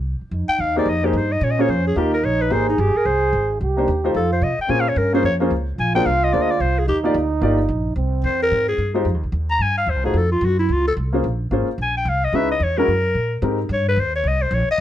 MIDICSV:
0, 0, Header, 1, 6, 480
1, 0, Start_track
1, 0, Key_signature, -4, "minor"
1, 0, Tempo, 272975
1, 561, Time_signature, 4, 2, 24, 8
1, 26031, End_track
2, 0, Start_track
2, 0, Title_t, "Clarinet"
2, 0, Program_c, 0, 71
2, 861, Note_on_c, 0, 79, 100
2, 1062, Note_on_c, 0, 77, 88
2, 1089, Note_off_c, 0, 79, 0
2, 1348, Note_off_c, 0, 77, 0
2, 1380, Note_on_c, 0, 74, 82
2, 1571, Note_on_c, 0, 75, 92
2, 1598, Note_off_c, 0, 74, 0
2, 1851, Note_on_c, 0, 67, 66
2, 1877, Note_off_c, 0, 75, 0
2, 2058, Note_on_c, 0, 72, 77
2, 2084, Note_off_c, 0, 67, 0
2, 2323, Note_on_c, 0, 75, 82
2, 2350, Note_off_c, 0, 72, 0
2, 2529, Note_on_c, 0, 73, 74
2, 2555, Note_off_c, 0, 75, 0
2, 2650, Note_on_c, 0, 75, 80
2, 2677, Note_off_c, 0, 73, 0
2, 2832, Note_on_c, 0, 73, 76
2, 2859, Note_off_c, 0, 75, 0
2, 2993, Note_on_c, 0, 72, 78
2, 3020, Note_off_c, 0, 73, 0
2, 3274, Note_off_c, 0, 72, 0
2, 3294, Note_on_c, 0, 68, 82
2, 3476, Note_on_c, 0, 67, 70
2, 3503, Note_off_c, 0, 68, 0
2, 3750, Note_off_c, 0, 67, 0
2, 3761, Note_on_c, 0, 70, 76
2, 3959, Note_on_c, 0, 73, 82
2, 3985, Note_off_c, 0, 70, 0
2, 4245, Note_on_c, 0, 71, 69
2, 4272, Note_off_c, 0, 73, 0
2, 4428, Note_on_c, 0, 72, 94
2, 4454, Note_off_c, 0, 71, 0
2, 4712, Note_off_c, 0, 72, 0
2, 4727, Note_on_c, 0, 63, 67
2, 4923, Note_on_c, 0, 67, 68
2, 4950, Note_off_c, 0, 63, 0
2, 5214, Note_on_c, 0, 70, 74
2, 5240, Note_off_c, 0, 67, 0
2, 5384, Note_on_c, 0, 72, 76
2, 5411, Note_off_c, 0, 70, 0
2, 6151, Note_off_c, 0, 72, 0
2, 7316, Note_on_c, 0, 69, 79
2, 7577, Note_off_c, 0, 69, 0
2, 7606, Note_on_c, 0, 72, 70
2, 7794, Note_on_c, 0, 75, 69
2, 7821, Note_off_c, 0, 72, 0
2, 8076, Note_off_c, 0, 75, 0
2, 8105, Note_on_c, 0, 79, 75
2, 8272, Note_on_c, 0, 80, 90
2, 8299, Note_off_c, 0, 79, 0
2, 8449, Note_on_c, 0, 77, 83
2, 8476, Note_off_c, 0, 80, 0
2, 8595, Note_on_c, 0, 73, 71
2, 8622, Note_off_c, 0, 77, 0
2, 8754, Note_on_c, 0, 70, 77
2, 8780, Note_off_c, 0, 73, 0
2, 9036, Note_off_c, 0, 70, 0
2, 9053, Note_on_c, 0, 72, 81
2, 9211, Note_off_c, 0, 72, 0
2, 9237, Note_on_c, 0, 73, 79
2, 9405, Note_off_c, 0, 73, 0
2, 10203, Note_on_c, 0, 80, 79
2, 10460, Note_off_c, 0, 80, 0
2, 10468, Note_on_c, 0, 79, 97
2, 10657, Note_on_c, 0, 77, 87
2, 10684, Note_off_c, 0, 79, 0
2, 10972, Note_on_c, 0, 75, 86
2, 10998, Note_off_c, 0, 77, 0
2, 11136, Note_on_c, 0, 74, 74
2, 11162, Note_off_c, 0, 75, 0
2, 11292, Note_on_c, 0, 75, 82
2, 11318, Note_off_c, 0, 74, 0
2, 11451, Note_on_c, 0, 74, 76
2, 11477, Note_off_c, 0, 75, 0
2, 11623, Note_on_c, 0, 72, 80
2, 11650, Note_off_c, 0, 74, 0
2, 11933, Note_on_c, 0, 68, 67
2, 11959, Note_off_c, 0, 72, 0
2, 12102, Note_off_c, 0, 68, 0
2, 12111, Note_on_c, 0, 67, 81
2, 12280, Note_off_c, 0, 67, 0
2, 14505, Note_on_c, 0, 72, 81
2, 14770, Note_off_c, 0, 72, 0
2, 14817, Note_on_c, 0, 70, 97
2, 15246, Note_off_c, 0, 70, 0
2, 15273, Note_on_c, 0, 68, 84
2, 15714, Note_off_c, 0, 68, 0
2, 16717, Note_on_c, 0, 82, 95
2, 16915, Note_on_c, 0, 80, 85
2, 16942, Note_off_c, 0, 82, 0
2, 17179, Note_off_c, 0, 80, 0
2, 17189, Note_on_c, 0, 77, 78
2, 17405, Note_on_c, 0, 72, 71
2, 17431, Note_off_c, 0, 77, 0
2, 17675, Note_off_c, 0, 72, 0
2, 17686, Note_on_c, 0, 68, 69
2, 17885, Note_on_c, 0, 69, 77
2, 17911, Note_off_c, 0, 68, 0
2, 18134, Note_off_c, 0, 69, 0
2, 18145, Note_on_c, 0, 65, 83
2, 18379, Note_on_c, 0, 66, 94
2, 18405, Note_off_c, 0, 65, 0
2, 18614, Note_off_c, 0, 66, 0
2, 18624, Note_on_c, 0, 64, 74
2, 18858, Note_on_c, 0, 65, 78
2, 18885, Note_off_c, 0, 64, 0
2, 19119, Note_off_c, 0, 65, 0
2, 19129, Note_on_c, 0, 69, 85
2, 19232, Note_off_c, 0, 69, 0
2, 20789, Note_on_c, 0, 80, 81
2, 21034, Note_off_c, 0, 80, 0
2, 21054, Note_on_c, 0, 79, 83
2, 21255, Note_on_c, 0, 77, 77
2, 21281, Note_off_c, 0, 79, 0
2, 21533, Note_on_c, 0, 75, 83
2, 21560, Note_off_c, 0, 77, 0
2, 21716, Note_on_c, 0, 76, 85
2, 21742, Note_off_c, 0, 75, 0
2, 21997, Note_off_c, 0, 76, 0
2, 22010, Note_on_c, 0, 75, 92
2, 22212, Note_on_c, 0, 73, 80
2, 22238, Note_off_c, 0, 75, 0
2, 22471, Note_on_c, 0, 70, 82
2, 22498, Note_off_c, 0, 73, 0
2, 23611, Note_off_c, 0, 70, 0
2, 24141, Note_on_c, 0, 73, 85
2, 24389, Note_off_c, 0, 73, 0
2, 24418, Note_on_c, 0, 71, 93
2, 24614, Note_on_c, 0, 72, 85
2, 24640, Note_off_c, 0, 71, 0
2, 24884, Note_off_c, 0, 72, 0
2, 24893, Note_on_c, 0, 73, 86
2, 25104, Note_on_c, 0, 75, 85
2, 25130, Note_off_c, 0, 73, 0
2, 25354, Note_on_c, 0, 72, 80
2, 25380, Note_off_c, 0, 75, 0
2, 25573, Note_on_c, 0, 73, 80
2, 25600, Note_off_c, 0, 72, 0
2, 25843, Note_off_c, 0, 73, 0
2, 25870, Note_on_c, 0, 75, 100
2, 26031, Note_off_c, 0, 75, 0
2, 26031, End_track
3, 0, Start_track
3, 0, Title_t, "Grand piano"
3, 0, Program_c, 1, 0
3, 1337, Note_on_c, 1, 58, 73
3, 1349, Note_on_c, 1, 63, 67
3, 1351, Note_on_c, 1, 67, 66
3, 1360, Note_on_c, 1, 68, 66
3, 1362, Note_on_c, 1, 72, 76
3, 1504, Note_off_c, 1, 58, 0
3, 1510, Note_off_c, 1, 63, 0
3, 1511, Note_off_c, 1, 67, 0
3, 1516, Note_off_c, 1, 68, 0
3, 1517, Note_off_c, 1, 72, 0
3, 1812, Note_on_c, 1, 58, 69
3, 1814, Note_on_c, 1, 63, 63
3, 1825, Note_on_c, 1, 67, 61
3, 1836, Note_on_c, 1, 68, 65
3, 1844, Note_on_c, 1, 72, 72
3, 1982, Note_off_c, 1, 58, 0
3, 1983, Note_off_c, 1, 63, 0
3, 1989, Note_off_c, 1, 67, 0
3, 1994, Note_off_c, 1, 68, 0
3, 1998, Note_off_c, 1, 72, 0
3, 2789, Note_on_c, 1, 58, 65
3, 2791, Note_on_c, 1, 61, 62
3, 2804, Note_on_c, 1, 65, 62
3, 2807, Note_on_c, 1, 68, 62
3, 2817, Note_on_c, 1, 72, 72
3, 2951, Note_off_c, 1, 58, 0
3, 2952, Note_off_c, 1, 61, 0
3, 2959, Note_off_c, 1, 65, 0
3, 2960, Note_off_c, 1, 68, 0
3, 2965, Note_off_c, 1, 72, 0
3, 3447, Note_on_c, 1, 58, 67
3, 3455, Note_on_c, 1, 63, 58
3, 3463, Note_on_c, 1, 65, 65
3, 3471, Note_on_c, 1, 67, 64
3, 3477, Note_on_c, 1, 70, 75
3, 3712, Note_off_c, 1, 58, 0
3, 3716, Note_off_c, 1, 63, 0
3, 3720, Note_off_c, 1, 65, 0
3, 3724, Note_off_c, 1, 67, 0
3, 3727, Note_off_c, 1, 70, 0
3, 4400, Note_on_c, 1, 58, 66
3, 4406, Note_on_c, 1, 63, 53
3, 4413, Note_on_c, 1, 67, 57
3, 4427, Note_on_c, 1, 68, 56
3, 4433, Note_on_c, 1, 72, 65
3, 4669, Note_off_c, 1, 58, 0
3, 4672, Note_off_c, 1, 63, 0
3, 4675, Note_off_c, 1, 67, 0
3, 4682, Note_off_c, 1, 68, 0
3, 4685, Note_off_c, 1, 72, 0
3, 6624, Note_on_c, 1, 58, 58
3, 6630, Note_on_c, 1, 62, 58
3, 6637, Note_on_c, 1, 63, 57
3, 6645, Note_on_c, 1, 67, 57
3, 6652, Note_on_c, 1, 72, 69
3, 6790, Note_off_c, 1, 58, 0
3, 6793, Note_off_c, 1, 62, 0
3, 6796, Note_off_c, 1, 63, 0
3, 6800, Note_off_c, 1, 67, 0
3, 6804, Note_off_c, 1, 72, 0
3, 7102, Note_on_c, 1, 57, 64
3, 7112, Note_on_c, 1, 63, 61
3, 7117, Note_on_c, 1, 65, 59
3, 7122, Note_on_c, 1, 67, 59
3, 7129, Note_on_c, 1, 72, 75
3, 7269, Note_off_c, 1, 57, 0
3, 7274, Note_off_c, 1, 63, 0
3, 7276, Note_off_c, 1, 65, 0
3, 7279, Note_off_c, 1, 67, 0
3, 7282, Note_off_c, 1, 72, 0
3, 8235, Note_on_c, 1, 58, 56
3, 8246, Note_on_c, 1, 61, 59
3, 8247, Note_on_c, 1, 65, 59
3, 8257, Note_on_c, 1, 68, 52
3, 8263, Note_on_c, 1, 72, 65
3, 8507, Note_off_c, 1, 58, 0
3, 8512, Note_off_c, 1, 61, 0
3, 8513, Note_off_c, 1, 65, 0
3, 8518, Note_off_c, 1, 68, 0
3, 8520, Note_off_c, 1, 72, 0
3, 9018, Note_on_c, 1, 58, 72
3, 9028, Note_on_c, 1, 61, 66
3, 9037, Note_on_c, 1, 65, 64
3, 9039, Note_on_c, 1, 68, 64
3, 9050, Note_on_c, 1, 72, 79
3, 9187, Note_off_c, 1, 58, 0
3, 9192, Note_off_c, 1, 61, 0
3, 9196, Note_off_c, 1, 65, 0
3, 9197, Note_off_c, 1, 68, 0
3, 9203, Note_off_c, 1, 72, 0
3, 9499, Note_on_c, 1, 58, 75
3, 9506, Note_on_c, 1, 61, 67
3, 9512, Note_on_c, 1, 65, 69
3, 9517, Note_on_c, 1, 68, 62
3, 9527, Note_on_c, 1, 72, 76
3, 9667, Note_off_c, 1, 58, 0
3, 9671, Note_off_c, 1, 61, 0
3, 9673, Note_off_c, 1, 65, 0
3, 9676, Note_off_c, 1, 68, 0
3, 9681, Note_off_c, 1, 72, 0
3, 10459, Note_on_c, 1, 58, 76
3, 10468, Note_on_c, 1, 62, 66
3, 10473, Note_on_c, 1, 65, 65
3, 10484, Note_on_c, 1, 72, 79
3, 10485, Note_on_c, 1, 68, 68
3, 10627, Note_off_c, 1, 58, 0
3, 10631, Note_off_c, 1, 62, 0
3, 10634, Note_off_c, 1, 65, 0
3, 10639, Note_off_c, 1, 72, 0
3, 10640, Note_off_c, 1, 68, 0
3, 11123, Note_on_c, 1, 58, 58
3, 11133, Note_on_c, 1, 62, 60
3, 11136, Note_on_c, 1, 65, 59
3, 11149, Note_on_c, 1, 72, 61
3, 11151, Note_on_c, 1, 68, 57
3, 11390, Note_off_c, 1, 58, 0
3, 11395, Note_off_c, 1, 62, 0
3, 11396, Note_off_c, 1, 65, 0
3, 11403, Note_off_c, 1, 72, 0
3, 11404, Note_off_c, 1, 68, 0
3, 12372, Note_on_c, 1, 58, 68
3, 12384, Note_on_c, 1, 63, 70
3, 12389, Note_on_c, 1, 65, 69
3, 12392, Note_on_c, 1, 67, 67
3, 12403, Note_on_c, 1, 74, 82
3, 12543, Note_off_c, 1, 58, 0
3, 12549, Note_off_c, 1, 63, 0
3, 12551, Note_off_c, 1, 65, 0
3, 12553, Note_off_c, 1, 67, 0
3, 12559, Note_off_c, 1, 74, 0
3, 13040, Note_on_c, 1, 58, 68
3, 13042, Note_on_c, 1, 63, 63
3, 13049, Note_on_c, 1, 65, 66
3, 13062, Note_on_c, 1, 67, 61
3, 13066, Note_on_c, 1, 74, 75
3, 13308, Note_off_c, 1, 58, 0
3, 13309, Note_off_c, 1, 63, 0
3, 13313, Note_off_c, 1, 65, 0
3, 13319, Note_off_c, 1, 67, 0
3, 13321, Note_off_c, 1, 74, 0
3, 15725, Note_on_c, 1, 56, 68
3, 15732, Note_on_c, 1, 63, 60
3, 15735, Note_on_c, 1, 65, 62
3, 15743, Note_on_c, 1, 67, 65
3, 15746, Note_on_c, 1, 72, 74
3, 15899, Note_off_c, 1, 56, 0
3, 15902, Note_off_c, 1, 63, 0
3, 15904, Note_off_c, 1, 65, 0
3, 15908, Note_off_c, 1, 67, 0
3, 15910, Note_off_c, 1, 72, 0
3, 17649, Note_on_c, 1, 57, 61
3, 17656, Note_on_c, 1, 63, 57
3, 17666, Note_on_c, 1, 65, 56
3, 17675, Note_on_c, 1, 66, 55
3, 17681, Note_on_c, 1, 72, 65
3, 17822, Note_off_c, 1, 57, 0
3, 17825, Note_off_c, 1, 63, 0
3, 17830, Note_off_c, 1, 65, 0
3, 17835, Note_off_c, 1, 66, 0
3, 17838, Note_off_c, 1, 72, 0
3, 19565, Note_on_c, 1, 58, 67
3, 19575, Note_on_c, 1, 61, 53
3, 19584, Note_on_c, 1, 65, 60
3, 19591, Note_on_c, 1, 68, 59
3, 19597, Note_on_c, 1, 72, 66
3, 19740, Note_off_c, 1, 58, 0
3, 19745, Note_off_c, 1, 61, 0
3, 19750, Note_off_c, 1, 65, 0
3, 19753, Note_off_c, 1, 68, 0
3, 19756, Note_off_c, 1, 72, 0
3, 20239, Note_on_c, 1, 58, 60
3, 20250, Note_on_c, 1, 61, 55
3, 20256, Note_on_c, 1, 65, 58
3, 20267, Note_on_c, 1, 68, 56
3, 20272, Note_on_c, 1, 72, 69
3, 20508, Note_off_c, 1, 58, 0
3, 20514, Note_off_c, 1, 61, 0
3, 20517, Note_off_c, 1, 65, 0
3, 20522, Note_off_c, 1, 68, 0
3, 20525, Note_off_c, 1, 72, 0
3, 21688, Note_on_c, 1, 56, 66
3, 21700, Note_on_c, 1, 61, 56
3, 21704, Note_on_c, 1, 63, 59
3, 21708, Note_on_c, 1, 64, 58
3, 21721, Note_on_c, 1, 71, 70
3, 21953, Note_off_c, 1, 56, 0
3, 21959, Note_off_c, 1, 61, 0
3, 21961, Note_off_c, 1, 63, 0
3, 21963, Note_off_c, 1, 64, 0
3, 21970, Note_off_c, 1, 71, 0
3, 22464, Note_on_c, 1, 56, 73
3, 22472, Note_on_c, 1, 61, 62
3, 22478, Note_on_c, 1, 64, 64
3, 22482, Note_on_c, 1, 66, 67
3, 22496, Note_on_c, 1, 70, 83
3, 22629, Note_off_c, 1, 56, 0
3, 22633, Note_off_c, 1, 61, 0
3, 22637, Note_off_c, 1, 64, 0
3, 22638, Note_off_c, 1, 66, 0
3, 22646, Note_off_c, 1, 70, 0
3, 23598, Note_on_c, 1, 56, 57
3, 23605, Note_on_c, 1, 60, 51
3, 23610, Note_on_c, 1, 63, 50
3, 23616, Note_on_c, 1, 67, 50
3, 23627, Note_on_c, 1, 70, 58
3, 23868, Note_off_c, 1, 56, 0
3, 23871, Note_off_c, 1, 60, 0
3, 23873, Note_off_c, 1, 63, 0
3, 23876, Note_off_c, 1, 67, 0
3, 23882, Note_off_c, 1, 70, 0
3, 26031, End_track
4, 0, Start_track
4, 0, Title_t, "Trombone"
4, 0, Program_c, 2, 57
4, 564, Note_on_c, 2, 63, 79
4, 2502, Note_on_c, 2, 61, 86
4, 2528, Note_off_c, 2, 63, 0
4, 3455, Note_on_c, 2, 63, 92
4, 3482, Note_off_c, 2, 61, 0
4, 4436, Note_on_c, 2, 68, 110
4, 4462, Note_off_c, 2, 63, 0
4, 6339, Note_off_c, 2, 68, 0
4, 6349, Note_on_c, 2, 67, 91
4, 7232, Note_off_c, 2, 67, 0
4, 7286, Note_on_c, 2, 65, 88
4, 8007, Note_off_c, 2, 65, 0
4, 8238, Note_on_c, 2, 61, 74
4, 9618, Note_off_c, 2, 61, 0
4, 10171, Note_on_c, 2, 65, 111
4, 12018, Note_off_c, 2, 65, 0
4, 12081, Note_on_c, 2, 63, 100
4, 13932, Note_off_c, 2, 63, 0
4, 13995, Note_on_c, 2, 60, 81
4, 15664, Note_off_c, 2, 60, 0
4, 26031, End_track
5, 0, Start_track
5, 0, Title_t, "Upright bass"
5, 0, Program_c, 3, 32
5, 0, Note_on_c, 3, 36, 75
5, 316, Note_off_c, 3, 36, 0
5, 551, Note_on_c, 3, 41, 77
5, 831, Note_off_c, 3, 41, 0
5, 1030, Note_on_c, 3, 39, 83
5, 1493, Note_off_c, 3, 39, 0
5, 1504, Note_on_c, 3, 41, 79
5, 1980, Note_off_c, 3, 41, 0
5, 1989, Note_on_c, 3, 43, 85
5, 2463, Note_off_c, 3, 43, 0
5, 2478, Note_on_c, 3, 46, 87
5, 2947, Note_off_c, 3, 46, 0
5, 2958, Note_on_c, 3, 41, 83
5, 3428, Note_off_c, 3, 41, 0
5, 3442, Note_on_c, 3, 39, 78
5, 3910, Note_off_c, 3, 39, 0
5, 3930, Note_on_c, 3, 34, 78
5, 4389, Note_off_c, 3, 34, 0
5, 4400, Note_on_c, 3, 32, 82
5, 4869, Note_off_c, 3, 32, 0
5, 4891, Note_on_c, 3, 31, 88
5, 5163, Note_off_c, 3, 31, 0
5, 5368, Note_on_c, 3, 36, 81
5, 5834, Note_off_c, 3, 36, 0
5, 5848, Note_on_c, 3, 32, 78
5, 6314, Note_off_c, 3, 32, 0
5, 6341, Note_on_c, 3, 36, 77
5, 6800, Note_off_c, 3, 36, 0
5, 6818, Note_on_c, 3, 39, 83
5, 7278, Note_off_c, 3, 39, 0
5, 7287, Note_on_c, 3, 41, 80
5, 7753, Note_off_c, 3, 41, 0
5, 7763, Note_on_c, 3, 48, 81
5, 8039, Note_off_c, 3, 48, 0
5, 8242, Note_on_c, 3, 46, 82
5, 8710, Note_off_c, 3, 46, 0
5, 8722, Note_on_c, 3, 43, 84
5, 9186, Note_off_c, 3, 43, 0
5, 9197, Note_on_c, 3, 41, 78
5, 9667, Note_off_c, 3, 41, 0
5, 9678, Note_on_c, 3, 37, 74
5, 10148, Note_off_c, 3, 37, 0
5, 10168, Note_on_c, 3, 34, 80
5, 10633, Note_off_c, 3, 34, 0
5, 10652, Note_on_c, 3, 36, 88
5, 11115, Note_off_c, 3, 36, 0
5, 11144, Note_on_c, 3, 38, 83
5, 11601, Note_off_c, 3, 38, 0
5, 11608, Note_on_c, 3, 36, 86
5, 12073, Note_off_c, 3, 36, 0
5, 12094, Note_on_c, 3, 39, 81
5, 12550, Note_off_c, 3, 39, 0
5, 12560, Note_on_c, 3, 38, 89
5, 13028, Note_off_c, 3, 38, 0
5, 13037, Note_on_c, 3, 31, 88
5, 13502, Note_off_c, 3, 31, 0
5, 13513, Note_on_c, 3, 34, 88
5, 13984, Note_off_c, 3, 34, 0
5, 13991, Note_on_c, 3, 36, 89
5, 14464, Note_off_c, 3, 36, 0
5, 14484, Note_on_c, 3, 40, 88
5, 14950, Note_off_c, 3, 40, 0
5, 14966, Note_on_c, 3, 44, 81
5, 15426, Note_off_c, 3, 44, 0
5, 15437, Note_on_c, 3, 43, 76
5, 15899, Note_off_c, 3, 43, 0
5, 15910, Note_on_c, 3, 41, 80
5, 16075, Note_off_c, 3, 41, 0
5, 16075, Note_on_c, 3, 39, 52
5, 16227, Note_off_c, 3, 39, 0
5, 16238, Note_on_c, 3, 36, 59
5, 16379, Note_off_c, 3, 36, 0
5, 16390, Note_on_c, 3, 39, 83
5, 16847, Note_off_c, 3, 39, 0
5, 16858, Note_on_c, 3, 43, 72
5, 17332, Note_off_c, 3, 43, 0
5, 17343, Note_on_c, 3, 39, 78
5, 17509, Note_off_c, 3, 39, 0
5, 17509, Note_on_c, 3, 36, 55
5, 17657, Note_off_c, 3, 36, 0
5, 17668, Note_on_c, 3, 32, 59
5, 17812, Note_off_c, 3, 32, 0
5, 17822, Note_on_c, 3, 41, 78
5, 18295, Note_off_c, 3, 41, 0
5, 18306, Note_on_c, 3, 42, 93
5, 18782, Note_off_c, 3, 42, 0
5, 18791, Note_on_c, 3, 37, 79
5, 19265, Note_off_c, 3, 37, 0
5, 19283, Note_on_c, 3, 36, 87
5, 19750, Note_off_c, 3, 36, 0
5, 19759, Note_on_c, 3, 34, 77
5, 20229, Note_off_c, 3, 34, 0
5, 20238, Note_on_c, 3, 32, 82
5, 20517, Note_off_c, 3, 32, 0
5, 20711, Note_on_c, 3, 34, 83
5, 21181, Note_off_c, 3, 34, 0
5, 21191, Note_on_c, 3, 36, 88
5, 21661, Note_off_c, 3, 36, 0
5, 21672, Note_on_c, 3, 37, 82
5, 22145, Note_off_c, 3, 37, 0
5, 22154, Note_on_c, 3, 40, 82
5, 22626, Note_off_c, 3, 40, 0
5, 22642, Note_on_c, 3, 42, 79
5, 23103, Note_off_c, 3, 42, 0
5, 23113, Note_on_c, 3, 46, 75
5, 23585, Note_off_c, 3, 46, 0
5, 23597, Note_on_c, 3, 44, 90
5, 24062, Note_off_c, 3, 44, 0
5, 24073, Note_on_c, 3, 43, 90
5, 24544, Note_off_c, 3, 43, 0
5, 24552, Note_on_c, 3, 39, 85
5, 25024, Note_off_c, 3, 39, 0
5, 25033, Note_on_c, 3, 36, 80
5, 25499, Note_off_c, 3, 36, 0
5, 25509, Note_on_c, 3, 34, 95
5, 25790, Note_off_c, 3, 34, 0
5, 26031, End_track
6, 0, Start_track
6, 0, Title_t, "Muted upright bass strokes"
6, 369, Note_on_c, 9, 29, 32
6, 545, Note_off_c, 9, 29, 0
6, 845, Note_on_c, 9, 29, 38
6, 1021, Note_off_c, 9, 29, 0
6, 5184, Note_on_c, 9, 29, 37
6, 5359, Note_off_c, 9, 29, 0
6, 8061, Note_on_c, 9, 29, 36
6, 8237, Note_off_c, 9, 29, 0
6, 20527, Note_on_c, 9, 29, 34
6, 20703, Note_off_c, 9, 29, 0
6, 25813, Note_on_c, 9, 29, 40
6, 25989, Note_off_c, 9, 29, 0
6, 26031, End_track
0, 0, End_of_file